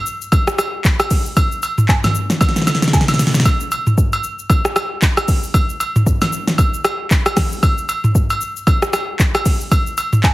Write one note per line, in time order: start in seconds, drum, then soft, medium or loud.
0.06 shaker medium
0.22 shaker medium
0.32 kick loud
0.32 high agogo medium
0.32 shaker medium
0.47 cross-stick loud
0.47 shaker medium
0.58 cross-stick loud
0.58 high agogo medium
0.58 shaker medium
0.85 kick loud
0.85 clap loud
0.85 shaker medium
1.00 cross-stick loud
1.00 high agogo medium
1.00 shaker soft
1.11 kick medium
1.11 open hi-hat medium
1.11 shaker medium
1.26 shaker medium
1.37 kick loud
1.37 high agogo medium
1.37 shaker medium
1.52 shaker medium
1.63 high agogo medium
1.63 shaker loud
1.78 mid tom loud
1.78 shaker medium
1.89 kick loud
1.89 clap loud
1.89 low woodblock medium
1.89 shaker medium
2.04 snare medium
2.04 mid tom medium
2.04 high agogo medium
2.04 shaker medium
2.15 shaker medium
2.30 snare medium
2.30 shaker medium
2.41 kick loud
2.41 snare medium
2.41 high agogo medium
2.41 shaker medium
2.49 snare medium
2.56 snare medium
2.56 shaker medium
2.62 snare medium
2.67 snare medium
2.67 high agogo medium
2.67 shaker medium
2.75 snare medium
2.82 snare medium
2.82 shaker soft
2.88 snare medium
2.93 kick loud
2.93 snare medium
2.93 low woodblock medium
2.93 shaker medium
3.01 snare medium
3.08 snare loud
3.08 high agogo medium
3.08 shaker soft
3.14 snare medium
3.19 snare loud
3.19 open hi-hat medium
3.19 shaker medium
3.27 snare medium
3.34 snare loud
3.34 shaker medium
3.40 snare loud
3.45 kick loud
3.45 high agogo medium
3.45 shaker medium
3.60 shaker medium
3.71 high agogo medium
3.71 shaker loud
3.87 mid tom medium
3.87 shaker medium
3.98 kick loud
3.98 shaker medium
4.13 high agogo medium
4.13 shaker medium
4.24 shaker medium
4.39 shaker medium
4.50 kick loud
4.50 high agogo medium
4.50 shaker medium
4.65 cross-stick loud
4.65 shaker medium
4.76 cross-stick loud
4.76 high agogo medium
4.76 shaker medium
5.02 kick loud
5.02 clap loud
5.02 shaker medium
5.17 cross-stick loud
5.17 high agogo medium
5.17 shaker soft
5.28 kick loud
5.28 open hi-hat medium
5.28 shaker medium
5.43 shaker medium
5.54 kick loud
5.54 high agogo medium
5.54 shaker medium
5.69 shaker medium
5.80 high agogo medium
5.80 shaker medium
5.96 mid tom loud
5.96 shaker medium
6.06 kick loud
6.06 shaker medium
6.21 snare medium
6.21 high agogo medium
6.21 shaker medium
6.33 shaker medium
6.47 snare medium
6.47 shaker medium
6.58 kick loud
6.58 high agogo medium
6.58 shaker medium
6.74 shaker medium
6.84 cross-stick loud
6.84 high agogo medium
6.84 shaker medium
7.11 kick loud
7.11 clap loud
7.11 shaker medium
7.26 cross-stick loud
7.26 high agogo medium
7.26 shaker soft
7.37 kick medium
7.37 cross-stick loud
7.37 snare medium
7.37 open hi-hat medium
7.37 shaker medium
7.52 shaker medium
7.63 kick loud
7.63 high agogo medium
7.63 shaker medium
7.78 shaker medium
7.89 high agogo medium
7.89 shaker loud
8.04 mid tom loud
8.04 shaker medium
8.15 kick loud
8.15 shaker medium
8.30 high agogo medium
8.30 shaker soft
8.41 shaker medium
8.56 shaker medium
8.67 kick loud
8.67 high agogo medium
8.67 shaker medium
8.82 cross-stick loud
8.82 shaker medium
8.93 cross-stick loud
8.93 high agogo medium
8.93 shaker medium
9.19 kick loud
9.19 clap loud
9.19 shaker medium
9.35 cross-stick loud
9.35 high agogo medium
9.35 shaker soft
9.46 kick medium
9.46 open hi-hat medium
9.46 shaker medium
9.61 shaker medium
9.72 kick loud
9.72 high agogo medium
9.72 shaker medium
9.87 shaker medium
9.98 high agogo medium
9.98 shaker loud
10.13 mid tom medium
10.13 shaker medium
10.23 kick loud
10.23 clap loud
10.23 low woodblock medium
10.23 shaker medium